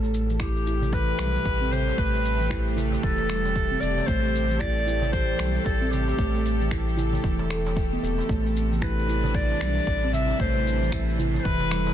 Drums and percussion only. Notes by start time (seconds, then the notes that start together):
0.03 darbuka ka, shaker
0.14 shaker
0.30 shaker
0.40 finger snap, kick, shaker
0.56 shaker
0.67 shaker
0.82 darbuka dum, shaker
0.93 kick, darbuka ka, shaker
1.09 darbuka ka
1.19 finger snap, shaker
1.35 darbuka ka, shaker
1.45 kick, shaker
1.71 darbuka dum, shaker
1.87 darbuka ka, darbuka tek, shaker
1.98 kick, shaker
2.14 darbuka ka, shaker
2.25 shaker
2.41 shaker
2.51 finger snap, kick, shaker
2.68 shaker
2.77 darbuka dum, shaker
2.92 darbuka dum, shaker
3.03 kick, darbuka ka, shaker
3.18 darbuka tek
3.30 finger snap, darbuka ka, shaker
3.46 darbuka tek, shaker
3.56 kick, shaker
3.83 shaker
3.98 darbuka ka, darbuka tek, shaker
4.08 kick, shaker
4.24 darbuka ka, shaker
4.35 shaker
4.51 shaker
4.61 finger snap, kick, shaker
4.77 shaker
4.88 shaker
5.02 darbuka dum, shaker
5.13 kick, darbuka ka, shaker
5.29 darbuka ka
5.39 finger snap, shaker
5.55 darbuka ka, shaker
5.66 kick, shaker
5.93 darbuka dum, shaker
6.08 darbuka ka, darbuka tek, shaker
6.19 kick, shaker
6.35 darbuka ka, shaker
6.46 shaker
6.62 shaker
6.71 finger snap, kick, shaker
6.88 shaker
6.97 darbuka dum, shaker
7.13 darbuka dum, shaker
7.23 kick, darbuka ka, shaker
7.39 darbuka tek
7.50 finger snap, darbuka ka, shaker
7.67 darbuka tek, shaker
7.77 kick, shaker
8.04 shaker
8.18 darbuka ka, darbuka tek, shaker
8.29 kick, shaker
8.44 darbuka ka, shaker
8.57 shaker
8.73 shaker
8.82 finger snap, kick, shaker
8.99 shaker
9.09 shaker
9.24 darbuka dum, shaker
9.34 kick, darbuka ka, shaker
9.51 darbuka ka
9.61 finger snap, shaker
9.76 darbuka ka, shaker
9.87 kick, shaker
10.13 darbuka dum, shaker
10.29 darbuka ka, darbuka tek, shaker
10.40 kick, shaker
10.55 darbuka ka, shaker
10.67 shaker
10.83 shaker
10.92 finger snap, kick, shaker
11.09 shaker
11.18 darbuka dum, shaker
11.34 darbuka dum, shaker
11.45 kick, darbuka ka, shaker
11.60 darbuka tek
11.71 finger snap, darbuka ka, shaker
11.87 darbuka tek, shaker